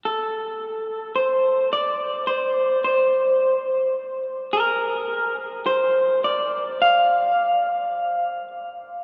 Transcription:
\new Staff \with { instrumentName = "Clean electric guitar" } { \time 4/4 \key c \mixolydian \tempo 4 = 106 a'2 c''4 d''4 | c''4 c''2~ c''8 r8 | bes'4. r8 c''4 d''4 | f''2. r4 | }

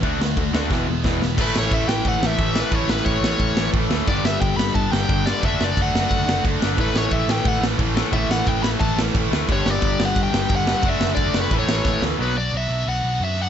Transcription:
<<
  \new Staff \with { instrumentName = "Overdriven electric guitar" } { \time 4/4 \key e \mixolydian \tempo 4 = 178 r1 | \key a \mixolydian b'8 cis''8 e''8 g''8 fis''8 e''4 b'8 | cis''8 b'8 cis''2 r4 | d''8 e''8 g''8 b''8 a''8 g''4 d''8 |
e''8 d''8 fis''2 r4 | b'8 cis''8 e''8 g''8 fis''8 r4. | e''8 fis''8 g''8 b''8 a''8 r4. | cis''8 d''4 fis''8 g''4 fis''4 |
e''8. d''8. b'8 cis''4. r8 | \key b \dorian b'8 d''8 e''4 fis''4 e''8 fis''8 | }
  \new Staff \with { instrumentName = "Distorted electric guitar" } { \time 4/4 \key e \mixolydian <d a d' fis'>2 <e gis b e'>2 | \key a \mixolydian <a, e a cis' e'>4. <a, e a cis' e'>2~ <a, e a cis' e'>8 | <a, e a cis' e'>4. <a, e a cis' e'>2~ <a, e a cis' e'>8 | <g b d' g'>4. <g b d' g'>2~ <g b d' g'>8 |
<fis a d' fis'>4. <fis a d' fis'>2~ <fis a d' fis'>8 | <a, e a cis' e'>4. <a, e a cis' e'>2~ <a, e a cis' e'>8 | <a, e a cis' e'>4. <a, e a cis' e'>2~ <a, e a cis' e'>8 | <g b d' g'>4. <g b d' g'>2~ <g b d' g'>8 |
<fis a d' fis'>4. <fis a d' fis'>8 <a, e a cis' e'>4. <a, e a cis' e'>8 | \key b \dorian <b, fis b d' fis'>8 <b, fis b d' fis'>8 <b, fis b d' fis'>8 <b, fis b d' fis'>8 <b, fis b d' fis'>8 <b, fis b d' fis'>8 <b, fis b d' fis'>8 <b, fis b d' fis'>8 | }
  \new Staff \with { instrumentName = "Overdriven electric guitar" } { \clef bass \time 4/4 \key e \mixolydian <d a d'>8 <d a>8 <d a>8 <d a d'>8 <e, b, e>8 <e, b,>8 <e, b, e>8 <e, b,>8 | \key a \mixolydian <a, e a>2.~ <a, e a>8 <a, e a>8 | <a, e a>2.~ <a, e a>8 <a, e a>8 | <g, d g>2.~ <g, d g>8 <g, d g>8 |
<d a d'>2.~ <d a d'>8 <d a d'>8 | <a, e a>2.~ <a, e a>8 <a, e a>8 | <a, e a>2.~ <a, e a>8 <a, e a>8 | <g, d g>2.~ <g, d g>8 <g, d g>8 |
<d a d'>2 <a, e a>2 | \key b \dorian <b, fis b>8 r2. r8 | }
  \new Staff \with { instrumentName = "Overdriven electric guitar" } { \clef bass \time 4/4 \key e \mixolydian <d a d'>8 <d a>8 <d a>8 <d a d'>8 <e, b, e>8 <e, b,>8 <e, b, e>8 <e, b,>8 | \key a \mixolydian <a, e a>2~ <a, e a>8 <a, e a>8 <a, e a>4 | <a, e a>2~ <a, e a>8 <a, e a>8 <a, e a>4 | <g, d g>2~ <g, d g>8 <g, d g>8 <g, d g>4 |
<d a d'>2~ <d a d'>8 <d a d'>8 <d a d'>4 | <a, e a>2~ <a, e a>8 <a, e a>8 <a, e a>4 | <a, e a>2~ <a, e a>8 <a, e a>8 <a, e a>4 | <g, d g>2~ <g, d g>8 <g, d g>8 <g, d g>4 |
<d a d'>2 <a, e a>2 | \key b \dorian <b, fis b>8 r2. r8 | }
  \new Staff \with { instrumentName = "Picked electric bass" } { \clef bass \time 4/4 \key e \mixolydian d,8 d,8 d,8 d,8 e,,8 e,,8 e,,8 e,,8 | \key a \mixolydian a,,8 a,,8 a,,8 a,,8 a,8 a,,8 a,,4 | a,,8 a,,8 a,,8 a,,8 a,,8 a,,8 a,,8 d,8 | g,,8 g,,8 g,,8 g,,8 g,8 g,,8 g,,4 |
fis,,8 fis,,8 fis,,8 fis,,8 fis,,8 fis,,8 fis,,8 g,,8 | a,,8 a,,8 a,,8 a,,8 a,8 a,,8 a,,4 | a,,8 a,,8 a,,8 a,,8 a,,8 a,,8 a,,8 d,8 | g,,8 g,,8 g,,8 g,,8 g,8 g,,8 g,,4 |
fis,,8 fis,,8 fis,,8 fis,,8 a,,8 a,,8 a,,8 d,8 | \key b \dorian b,,4 b,,8 b,,8 b,,8 b,,8 fis,4 | }
  \new DrumStaff \with { instrumentName = "Drums" } \drummode { \time 4/4 <cymc bd>8 sn8 <cymc bd>8 sn8 <bd sn>4 <bd sn>8 sn8 | <cymc bd>8 sn8 <cymc bd>8 sn8 <cymc bd>8 sn8 <cymc bd>8 sn8 | <cymc bd>8 sn8 <cymc bd>8 sn8 <cymc bd>8 sn8 <cymc bd>8 sn8 | <cymc bd>8 sn8 <cymc bd>8 sn8 <cymc bd>8 sn8 <cymc bd>8 sn8 |
<cymc bd>8 sn8 <cymc bd>8 sn8 <cymc bd>8 sn8 <cymc bd>8 sn8 | <cymc bd>8 sn8 <cymc bd>8 sn8 <cymc bd>8 sn8 <cymc bd>8 sn8 | <cymc bd>8 sn8 <cymc bd>8 sn8 <cymc bd>8 sn8 <cymc bd>8 sn8 | <cymc bd>8 sn8 <cymc bd>8 sn8 <cymc bd>8 sn8 <cymc bd>8 sn8 |
<cymc bd>8 sn8 <cymc bd>8 sn8 <cymc bd>8 sn8 <bd sn>8 sn8 | r4 r4 r4 r4 | }
>>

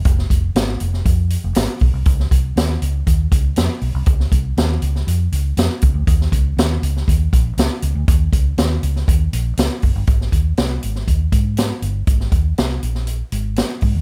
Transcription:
<<
  \new Staff \with { instrumentName = "Fingered electric bass" } { \clef bass \time 4/4 \key aes \major \tempo 4 = 120 f,,8 f,,8 aes,,8 f,,8 f,8. f,,16 aes,,16 r16 ces,16 c,16 | des,8 c,8 ees,8 des,8 ees,8 des,8 f,16 r16 ces,16 c,16 | des,8 c,8 ees,8 des,8 f,8 des,8 f,16 r16 des,16 d,16 | ees,8 des,8 ees,8 des,8 ees,8 bes,,8 des,16 r16 des,16 d,16 |
ees,8 des,8 ees,8 des,8 ees,8 bes,,8 des,16 r16 ges,,16 g,,16 | aes,,8 ees,8 c,8 aes,,8 ees,8 aes,4 g,,8 | aes,,8 ees,8 c,8 bes,,4 aes,,8. r16 aes,16 ees,16 | }
  \new DrumStaff \with { instrumentName = "Drums" } \drummode { \time 4/4 <hh bd>16 sn16 <hh bd>8 <hh sn>8 hh16 sn16 <hh bd>8 hh8 <hh sn>8 <hho bd>8 | <hh bd>16 sn16 <hh bd>8 <hh sn>8 hh8 <hh bd>8 <hh bd>8 <hh sn>8 hho8 | <hh bd>16 sn16 <hh bd>8 <hh sn>8 hh16 sn16 hh8 hh8 <hh sn>8 <hh bd>8 | <hh bd>16 sn16 <hh bd>8 <hh sn>8 hh16 sn16 <hh bd>8 <hh bd>8 <hh sn>8 hh8 |
<hh bd>8 <hh bd>8 <hh sn>8 hh16 sn16 <hh bd>8 hh8 <hh sn>8 <hho bd>8 | <hh bd>16 sn16 <hh bd>8 <hh sn>8 hh16 sn16 <hh bd>8 <hh bd>8 <hh sn>8 hh8 | <hh bd>16 sn16 <hh bd>8 <hh sn>8 hh16 sn16 hh8 hh8 <hh sn>8 <hho bd>8 | }
>>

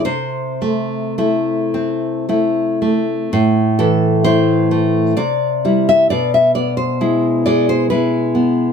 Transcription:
\new Staff \with { instrumentName = "Nylon-string guitar" } { \time 3/4 \key a \minor \tempo 4 = 64 << { c''2~ c''8 r8 | r8 a'8 c''4 d''8. e''16 | d''16 e''16 d''16 c''8. d''16 c''16 b'4 | } \\ { c8 a8 <a e'>8 c'8 <a e'>8 a8 | a,8 e8 <a e'>8 a8 c8 <g e'>8 | b,8 b8 <gis e'>8 gis8 <gis e'>8 b8 | } >> }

